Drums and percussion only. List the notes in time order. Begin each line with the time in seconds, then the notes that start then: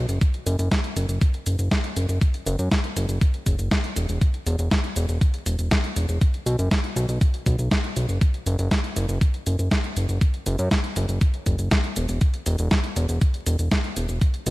0.09 closed hi-hat, cabasa
0.21 kick, closed hi-hat, cabasa
0.34 closed hi-hat
0.47 closed hi-hat, cabasa
0.59 closed hi-hat, cabasa
0.71 kick, snare, closed hi-hat, cabasa
0.84 closed hi-hat
0.96 closed hi-hat, cabasa
1.09 closed hi-hat, cabasa
1.21 kick, closed hi-hat, cabasa
1.34 closed hi-hat
1.46 closed hi-hat, cabasa
1.59 closed hi-hat, cabasa
1.71 kick, snare, closed hi-hat, cabasa
1.84 closed hi-hat
1.97 closed hi-hat, cabasa
2.09 closed hi-hat, cabasa
2.21 kick, closed hi-hat, cabasa
2.34 closed hi-hat
2.47 closed hi-hat, cabasa
2.59 closed hi-hat, cabasa
2.71 kick, snare, closed hi-hat, cabasa
2.84 closed hi-hat
2.97 closed hi-hat, cabasa
3.09 closed hi-hat, cabasa
3.21 kick, closed hi-hat, cabasa
3.34 closed hi-hat
3.46 kick, closed hi-hat, cabasa
3.59 closed hi-hat, cabasa
3.71 kick, snare, closed hi-hat, cabasa
3.84 closed hi-hat
3.96 closed hi-hat, cabasa
4.09 closed hi-hat, cabasa
4.21 kick, closed hi-hat, cabasa
4.34 closed hi-hat
4.46 closed hi-hat, cabasa
4.59 closed hi-hat, cabasa
4.71 kick, snare, closed hi-hat, cabasa
4.84 closed hi-hat
4.96 closed hi-hat, cabasa
5.09 closed hi-hat, cabasa
5.21 kick, closed hi-hat, cabasa
5.34 closed hi-hat
5.46 closed hi-hat, cabasa
5.59 closed hi-hat, cabasa
5.71 kick, snare, closed hi-hat, cabasa
5.84 closed hi-hat
5.96 closed hi-hat, cabasa
6.09 closed hi-hat, cabasa
6.21 kick, closed hi-hat, cabasa
6.34 closed hi-hat
6.46 closed hi-hat, cabasa
6.59 closed hi-hat, cabasa
6.71 kick, snare, closed hi-hat, cabasa
6.84 closed hi-hat
6.97 closed hi-hat, cabasa
7.09 closed hi-hat, cabasa
7.21 kick, closed hi-hat, cabasa
7.34 closed hi-hat
7.46 kick, closed hi-hat, cabasa
7.59 closed hi-hat, cabasa
7.71 kick, snare, closed hi-hat, cabasa
7.84 closed hi-hat
7.96 closed hi-hat, cabasa
8.09 closed hi-hat, cabasa
8.21 kick, closed hi-hat, cabasa
8.34 closed hi-hat
8.46 closed hi-hat, cabasa
8.59 closed hi-hat, cabasa
8.71 kick, snare, closed hi-hat, cabasa
8.84 closed hi-hat
8.96 closed hi-hat, cabasa
9.09 closed hi-hat, cabasa
9.21 kick, closed hi-hat, cabasa
9.34 closed hi-hat
9.46 closed hi-hat, cabasa
9.59 closed hi-hat, cabasa
9.71 kick, snare, closed hi-hat, cabasa
9.84 closed hi-hat
9.97 closed hi-hat, cabasa
10.09 closed hi-hat, cabasa
10.21 kick, closed hi-hat, cabasa
10.34 closed hi-hat
10.46 closed hi-hat, cabasa
10.59 closed hi-hat, cabasa
10.71 kick, snare, closed hi-hat, cabasa
10.84 closed hi-hat
10.96 closed hi-hat, cabasa
11.09 closed hi-hat, cabasa
11.21 kick, closed hi-hat, cabasa
11.34 closed hi-hat
11.46 kick, closed hi-hat, cabasa
11.59 closed hi-hat, cabasa
11.71 kick, snare, closed hi-hat, cabasa
11.84 closed hi-hat
11.96 closed hi-hat, cabasa
12.09 closed hi-hat, cabasa
12.21 kick, closed hi-hat, cabasa
12.34 closed hi-hat
12.46 closed hi-hat, cabasa
12.59 closed hi-hat, cabasa
12.71 kick, snare, closed hi-hat, cabasa
12.84 closed hi-hat
12.96 closed hi-hat, cabasa
13.09 closed hi-hat, cabasa
13.21 kick, closed hi-hat, cabasa
13.34 closed hi-hat
13.46 closed hi-hat, cabasa
13.59 closed hi-hat, cabasa
13.71 kick, snare, closed hi-hat, cabasa
13.84 closed hi-hat
13.97 closed hi-hat, cabasa
14.09 closed hi-hat, cabasa
14.21 kick, closed hi-hat, cabasa
14.34 closed hi-hat
14.47 closed hi-hat, cabasa